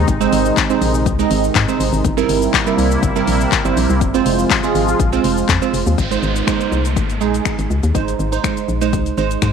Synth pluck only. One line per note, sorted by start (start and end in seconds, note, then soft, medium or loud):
0.20 0.43 G#3 loud
0.20 0.43 C4 loud
0.20 0.43 D#4 loud
0.20 0.43 C5 loud
0.70 0.92 G#3 medium
0.70 0.92 C4 medium
0.70 0.93 D#4 medium
0.70 0.93 C5 medium
1.19 1.42 G#3 loud
1.19 1.42 C4 medium
1.19 1.42 D#4 medium
1.19 1.42 D#5 loud
1.68 1.91 G#3 medium
1.68 1.91 C4 medium
1.68 1.91 D#4 medium
1.68 1.91 C5 medium
2.17 2.40 G3 loud
2.17 2.40 C4 medium
2.17 2.40 E4 medium
2.17 2.40 A#4 loud
2.67 2.89 G3 medium
2.67 2.89 C4 medium
2.67 2.89 E4 medium
2.67 2.89 A#4 loud
3.16 3.38 G3 loud
3.16 3.38 C4 medium
3.16 3.38 E4 medium
3.16 3.39 A#4 loud
3.65 3.87 G3 medium
3.65 3.88 C4 medium
3.65 3.88 E4 medium
3.65 3.88 C5 medium
4.14 4.37 G#3 loud
4.14 4.37 C4 loud
4.14 4.37 F4 loud
4.14 4.37 C5 loud
4.63 4.86 G#3 medium
4.63 4.86 C4 medium
4.63 4.86 F4 medium
4.63 4.86 G#4 loud
5.12 5.35 G#3 loud
5.12 5.35 C4 medium
5.12 5.35 F4 medium
5.12 5.35 C5 loud
5.62 5.84 G#3 medium
5.62 5.84 C4 medium
5.62 5.84 F4 medium
5.62 5.84 C5 medium
6.11 6.28 G#3 medium
6.11 6.28 D#4 medium
6.11 6.28 C5 loud
6.47 6.82 G#3 loud
6.47 6.82 D#4 medium
6.47 6.82 C5 loud
7.21 7.55 G#3 medium
7.21 7.55 D#4 medium
7.21 7.55 G#4 loud
7.94 8.12 G#3 medium
7.94 8.12 D#4 medium
7.94 8.12 C5 medium
8.32 8.38 D#4 medium
8.32 8.38 C5 loud
8.44 8.61 G#3 medium
8.44 8.61 D#4 medium
8.44 8.61 C5 medium
8.81 8.98 G#3 medium
8.81 8.98 D#4 medium
8.81 8.98 C5 loud
9.17 9.30 G#3 medium
9.17 9.30 D#4 medium
9.17 9.30 C5 loud
9.42 9.53 G#3 medium
9.42 9.53 D#4 medium
9.42 9.53 C5 loud